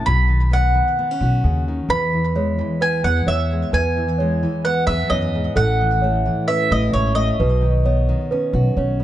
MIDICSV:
0, 0, Header, 1, 5, 480
1, 0, Start_track
1, 0, Key_signature, 4, "major"
1, 0, Tempo, 457666
1, 73, Time_signature, 4, 2, 24, 8
1, 9480, End_track
2, 0, Start_track
2, 0, Title_t, "Mandolin"
2, 0, Program_c, 0, 25
2, 62, Note_on_c, 0, 83, 72
2, 555, Note_off_c, 0, 83, 0
2, 559, Note_on_c, 0, 78, 68
2, 1716, Note_off_c, 0, 78, 0
2, 1993, Note_on_c, 0, 83, 83
2, 2953, Note_off_c, 0, 83, 0
2, 2957, Note_on_c, 0, 80, 75
2, 3188, Note_off_c, 0, 80, 0
2, 3192, Note_on_c, 0, 78, 70
2, 3440, Note_on_c, 0, 76, 69
2, 3441, Note_off_c, 0, 78, 0
2, 3923, Note_on_c, 0, 80, 75
2, 3932, Note_off_c, 0, 76, 0
2, 4838, Note_off_c, 0, 80, 0
2, 4874, Note_on_c, 0, 78, 73
2, 5101, Note_off_c, 0, 78, 0
2, 5106, Note_on_c, 0, 76, 70
2, 5346, Note_on_c, 0, 75, 69
2, 5359, Note_off_c, 0, 76, 0
2, 5798, Note_off_c, 0, 75, 0
2, 5838, Note_on_c, 0, 78, 77
2, 6789, Note_off_c, 0, 78, 0
2, 6793, Note_on_c, 0, 76, 74
2, 7043, Note_off_c, 0, 76, 0
2, 7047, Note_on_c, 0, 75, 65
2, 7268, Note_off_c, 0, 75, 0
2, 7272, Note_on_c, 0, 73, 66
2, 7495, Note_off_c, 0, 73, 0
2, 7500, Note_on_c, 0, 75, 68
2, 9145, Note_off_c, 0, 75, 0
2, 9480, End_track
3, 0, Start_track
3, 0, Title_t, "Celesta"
3, 0, Program_c, 1, 8
3, 1991, Note_on_c, 1, 71, 74
3, 2464, Note_off_c, 1, 71, 0
3, 2475, Note_on_c, 1, 73, 60
3, 2946, Note_off_c, 1, 73, 0
3, 2948, Note_on_c, 1, 71, 72
3, 3423, Note_off_c, 1, 71, 0
3, 3427, Note_on_c, 1, 73, 62
3, 3902, Note_off_c, 1, 73, 0
3, 3915, Note_on_c, 1, 71, 74
3, 4386, Note_off_c, 1, 71, 0
3, 4386, Note_on_c, 1, 73, 63
3, 4862, Note_off_c, 1, 73, 0
3, 4872, Note_on_c, 1, 71, 68
3, 5345, Note_off_c, 1, 71, 0
3, 5345, Note_on_c, 1, 73, 69
3, 5821, Note_off_c, 1, 73, 0
3, 5828, Note_on_c, 1, 69, 77
3, 6303, Note_off_c, 1, 69, 0
3, 6311, Note_on_c, 1, 73, 60
3, 6785, Note_off_c, 1, 73, 0
3, 6796, Note_on_c, 1, 71, 72
3, 7267, Note_off_c, 1, 71, 0
3, 7274, Note_on_c, 1, 73, 66
3, 7746, Note_off_c, 1, 73, 0
3, 7759, Note_on_c, 1, 71, 76
3, 8229, Note_off_c, 1, 71, 0
3, 8237, Note_on_c, 1, 73, 62
3, 8707, Note_off_c, 1, 73, 0
3, 8715, Note_on_c, 1, 71, 73
3, 9186, Note_off_c, 1, 71, 0
3, 9197, Note_on_c, 1, 73, 61
3, 9480, Note_off_c, 1, 73, 0
3, 9480, End_track
4, 0, Start_track
4, 0, Title_t, "Steel-string acoustic guitar"
4, 0, Program_c, 2, 25
4, 67, Note_on_c, 2, 47, 62
4, 299, Note_on_c, 2, 51, 43
4, 311, Note_off_c, 2, 47, 0
4, 534, Note_on_c, 2, 59, 49
4, 767, Note_off_c, 2, 51, 0
4, 780, Note_on_c, 2, 51, 47
4, 1036, Note_off_c, 2, 59, 0
4, 1036, Note_on_c, 2, 59, 53
4, 1164, Note_off_c, 2, 59, 0
4, 1164, Note_on_c, 2, 61, 38
4, 1289, Note_on_c, 2, 66, 53
4, 1514, Note_on_c, 2, 49, 52
4, 1748, Note_off_c, 2, 51, 0
4, 1755, Note_off_c, 2, 49, 0
4, 1763, Note_on_c, 2, 51, 47
4, 1973, Note_off_c, 2, 66, 0
4, 1989, Note_on_c, 2, 40, 65
4, 1999, Note_off_c, 2, 51, 0
4, 2000, Note_off_c, 2, 61, 0
4, 2233, Note_on_c, 2, 52, 43
4, 2470, Note_on_c, 2, 56, 54
4, 2706, Note_off_c, 2, 52, 0
4, 2710, Note_on_c, 2, 52, 49
4, 2947, Note_on_c, 2, 59, 52
4, 3193, Note_on_c, 2, 68, 53
4, 3423, Note_off_c, 2, 59, 0
4, 3436, Note_on_c, 2, 59, 46
4, 3671, Note_off_c, 2, 56, 0
4, 3683, Note_on_c, 2, 56, 44
4, 3886, Note_off_c, 2, 68, 0
4, 3891, Note_off_c, 2, 56, 0
4, 3904, Note_off_c, 2, 40, 0
4, 3917, Note_on_c, 2, 40, 65
4, 4161, Note_off_c, 2, 52, 0
4, 4165, Note_on_c, 2, 52, 50
4, 4406, Note_on_c, 2, 56, 51
4, 4640, Note_off_c, 2, 52, 0
4, 4644, Note_on_c, 2, 52, 52
4, 4877, Note_off_c, 2, 59, 0
4, 4895, Note_on_c, 2, 59, 56
4, 5123, Note_on_c, 2, 68, 61
4, 5357, Note_off_c, 2, 40, 0
4, 5362, Note_on_c, 2, 42, 53
4, 5600, Note_off_c, 2, 42, 0
4, 5611, Note_on_c, 2, 44, 52
4, 5812, Note_off_c, 2, 52, 0
4, 5812, Note_off_c, 2, 68, 0
4, 5813, Note_off_c, 2, 56, 0
4, 5844, Note_off_c, 2, 44, 0
4, 5846, Note_off_c, 2, 59, 0
4, 5854, Note_on_c, 2, 45, 66
4, 6094, Note_on_c, 2, 52, 55
4, 6332, Note_on_c, 2, 57, 50
4, 6550, Note_off_c, 2, 52, 0
4, 6563, Note_on_c, 2, 52, 53
4, 6811, Note_on_c, 2, 61, 57
4, 7041, Note_on_c, 2, 64, 59
4, 7279, Note_on_c, 2, 44, 51
4, 7495, Note_off_c, 2, 45, 0
4, 7507, Note_on_c, 2, 45, 50
4, 7518, Note_off_c, 2, 44, 0
4, 7732, Note_off_c, 2, 52, 0
4, 7736, Note_off_c, 2, 57, 0
4, 7736, Note_off_c, 2, 61, 0
4, 7753, Note_off_c, 2, 45, 0
4, 7758, Note_on_c, 2, 47, 62
4, 7760, Note_off_c, 2, 64, 0
4, 7984, Note_on_c, 2, 51, 49
4, 7998, Note_off_c, 2, 47, 0
4, 8238, Note_on_c, 2, 59, 52
4, 8471, Note_off_c, 2, 51, 0
4, 8482, Note_on_c, 2, 51, 56
4, 8726, Note_on_c, 2, 61, 54
4, 8962, Note_on_c, 2, 66, 61
4, 9191, Note_off_c, 2, 61, 0
4, 9203, Note_on_c, 2, 61, 50
4, 9425, Note_off_c, 2, 59, 0
4, 9438, Note_on_c, 2, 59, 41
4, 9480, Note_off_c, 2, 51, 0
4, 9480, Note_off_c, 2, 59, 0
4, 9480, Note_off_c, 2, 61, 0
4, 9480, Note_off_c, 2, 66, 0
4, 9480, End_track
5, 0, Start_track
5, 0, Title_t, "Upright bass"
5, 0, Program_c, 3, 32
5, 70, Note_on_c, 3, 35, 80
5, 822, Note_off_c, 3, 35, 0
5, 1265, Note_on_c, 3, 35, 75
5, 1456, Note_off_c, 3, 35, 0
5, 1509, Note_on_c, 3, 39, 61
5, 1887, Note_off_c, 3, 39, 0
5, 1979, Note_on_c, 3, 40, 78
5, 2736, Note_off_c, 3, 40, 0
5, 3189, Note_on_c, 3, 40, 78
5, 3380, Note_off_c, 3, 40, 0
5, 3425, Note_on_c, 3, 40, 68
5, 3805, Note_off_c, 3, 40, 0
5, 3913, Note_on_c, 3, 40, 81
5, 4665, Note_off_c, 3, 40, 0
5, 5110, Note_on_c, 3, 40, 85
5, 5301, Note_off_c, 3, 40, 0
5, 5354, Note_on_c, 3, 40, 76
5, 5730, Note_off_c, 3, 40, 0
5, 5830, Note_on_c, 3, 33, 89
5, 6583, Note_off_c, 3, 33, 0
5, 7040, Note_on_c, 3, 33, 83
5, 7227, Note_off_c, 3, 33, 0
5, 7276, Note_on_c, 3, 33, 64
5, 7652, Note_off_c, 3, 33, 0
5, 7758, Note_on_c, 3, 35, 71
5, 8507, Note_off_c, 3, 35, 0
5, 8950, Note_on_c, 3, 35, 75
5, 9140, Note_off_c, 3, 35, 0
5, 9194, Note_on_c, 3, 35, 64
5, 9480, Note_off_c, 3, 35, 0
5, 9480, End_track
0, 0, End_of_file